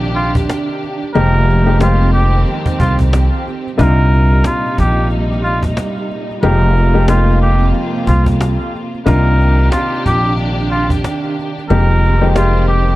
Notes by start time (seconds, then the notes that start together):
Already playing: A#1 C3 D#3 A#3 D4 D#4 F4 G4
0.05 cajon slap
0.15 F4, cajon slap
0.35 cajon bass
0.50 cajon slap
0.69 cajon slap
0.84 cajon slap
1.03 cajon slap
1.14 F1 F2 D#3 G#3 A#3 C4 D#4 G4 A#4, cajon slap
1.35 cajon slap
1.50 cajon slap
1.66 F2 G#3 A#3 D#4 G4, cajon slap
1.80 F2 G#3 A#3 D#4 F4 G4, cajon slap
2.02 cajon slap
2.13 G4, cajon slap
2.34 cajon slap
2.46 cajon slap
2.66 cajon bass, cajon slap
2.80 C2 F4, cajon bass
2.99 cajon bass
3.13 cajon slap
3.33 cajon slap
3.48 cajon slap
3.67 cajon slap
3.77 C2 A#2 C3 G3 A#3 D4 D#4 F4 A#4, cajon bass
3.98 cajon slap
4.13 cajon slap
4.31 cajon slap
4.44 F4, cajon slap
4.66 cajon slap
4.78 A#1 G4, cajon bass
4.97 cajon slap
5.10 cajon slap
5.32 cajon slap
5.44 F4, cajon slap
5.63 cajon bass
5.77 cajon slap
5.97 cajon slap
6.11 cajon slap
6.31 cajon slap
6.42 F1 F2 C3 G#3 A#3 D#4 F4 G4 A#4, cajon slap
6.62 cajon slap
6.77 cajon slap
6.94 F2 G#3 A#3 D#4 G4, cajon slap
7.08 F2 G#3 A#3 D#4 F4 G4, cajon slap
7.30 cajon slap
7.41 G4, cajon slap
7.61 cajon slap
7.73 cajon slap
7.96 cajon slap
8.07 C2 F4, cajon bass
8.26 cajon bass
8.41 cajon slap
8.60 cajon slap
8.75 cajon slap
8.95 cajon slap
9.05 C2 C3 D#3 A#3 D4 D#4 F4 G4 A#4, cajon bass
9.26 cajon slap
9.41 cajon slap
9.59 cajon slap
9.72 F4, cajon slap
9.94 cajon slap
10.06 A#1 G4, cajon bass
10.25 cajon slap
10.37 cajon slap
10.60 cajon slap
10.71 F4, cajon slap
10.90 cajon bass
11.04 cajon slap
11.24 cajon slap
11.39 cajon slap
11.58 cajon slap
11.69 F1 F2 D#3 G#3 A#3 C4 D#4 G4 A#4, cajon slap
11.90 cajon slap
12.05 cajon slap
12.21 F2 G#3 A#3 D#4 G4, cajon slap
12.35 F2 G#3 A#3 D#4 F4 G4, cajon slap
12.57 cajon slap
12.68 G4, cajon slap
12.89 cajon slap